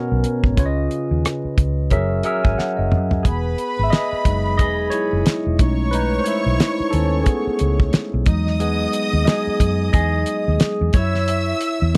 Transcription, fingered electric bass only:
0.12 B1
0.44 G#1
0.58 C#2
1.11 D#2
1.45 muted fingered electric bass stroke
1.58 C#2
1.92 F#1
2.45 G#1
2.79 F#1
2.92 F#2
3.25 E1
3.79 G#1
4.13 muted fingered electric bass stroke
4.26 F#1
4.60 E1
5.13 F#1
5.28 muted fingered electric bass stroke
5.46 E1
5.60 B1
6.46 B1
6.80 muted fingered electric bass stroke
6.93 D#2
7.47 muted fingered electric bass stroke
7.61 C#2
7.94 muted fingered electric bass stroke
8.14 B1
8.27 E2
9.13 D#2
9.47 muted fingered electric bass stroke
9.61 F#2
9.94 E2
10.48 D#2
10.81 E2
10.94 F#2
11.82 E2

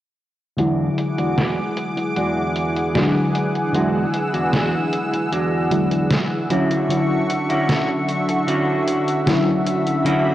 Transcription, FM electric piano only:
0.57 D3 F#3 G#3 E4
2.94 D3 F#3 G#3 D4
3.72 D3 F#3 G#3 E4
5.70 D3 F#3 G#3 E4
6.50 D3 F#3 C#4 E4
6.89 D3 F#3 C#4 E4
9.26 D3 F#3 C#4 E4
10.04 D3 F#3 C#4 E4

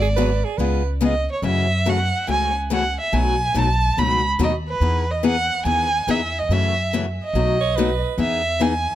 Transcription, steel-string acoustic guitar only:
0.17 D3 F#3 B3 F#4 G#4
0.59 C#3 G#3 B3 F4 G#4
1.01 C#3 G#3 B3 F4 G#4
1.43 C#3 E3 A3 C#4 F#4
1.86 C#3 E3 A3 C#4 F#4
2.27 C#3 E3 A3 C#4 F#4
2.70 C#3 E3 A3 C#4 F#4
3.13 B2 F#3 A3 D#4 F#4
3.54 B2 F#3 A3 D#4 F#4
3.98 B2 F#3 A3 D#4 F#4
4.39 B2 F#3 A3 D#4 F#4
4.81 E3 B3 D#4 G#4
5.23 E3 B3 D#4 G#4
5.65 E3 B3 D#4 G#4
6.08 E3 B3 D#4 G#4
6.50 C#3 E3 A3 C#4 F#4
6.93 C#3 E3 A3 C#4 F#4
7.35 B2 F#3 A3 D#4 F#4
7.78 B2 F#3 A3 D#4 F#4
8.18 E3 B3 D#4 G#4
8.60 E3 B3 D#4 G#4

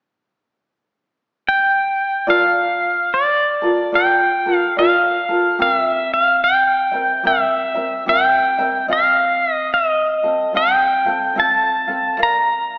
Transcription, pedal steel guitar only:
1.49 G5
2.30 F5
3.14 D5
3.95 G5
4.56 F5
4.79 F5
5.62 F5
5.75 E5
6.14 F5
6.44 G5
7.27 E5
8.09 G5
8.93 F5
9.53 D#5
9.74 D#5
10.57 G5
11.40 A5
12.23 A#5

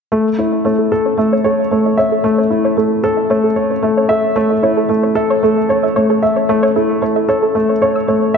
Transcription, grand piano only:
0.12 A3
0.38 E4
0.65 A3
0.92 A4
1.18 A3
1.44 C#5
1.71 A3
1.98 E5
2.24 A3
2.50 E4
2.77 A3
3.04 A4
3.30 A3
3.56 C#5
3.83 A3
4.09 E5
4.36 A3
4.63 E4
4.89 A3
5.15 A4
5.43 A3
5.69 C#5
5.96 A3
6.23 E5
6.49 A3
6.76 E4
7.02 A3
7.29 A4
7.55 A3
7.82 C#5
8.08 A3

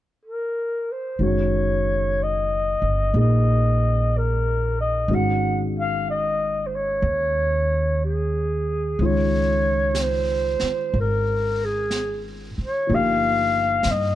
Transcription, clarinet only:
0.25 A#4
0.92 C5
1.24 C#5
2.23 D#5
3.19 D#5
4.18 A#4
4.80 D#5
5.14 F#5
5.79 F5
6.10 D#5
6.66 C5
6.75 C#5
8.05 G#4
9.05 C#5
10.01 C5
11.00 A#4
11.65 G#4
12.64 C#5
12.94 F5
13.91 D#5

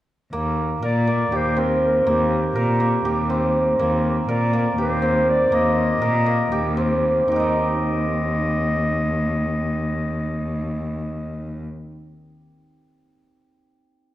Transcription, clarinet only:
0.84 D5
1.36 C5
1.59 A#4
1.86 A#4
2.10 G4
4.30 D5
4.81 C5
5.30 D5
5.55 D#5
7.28 D#5

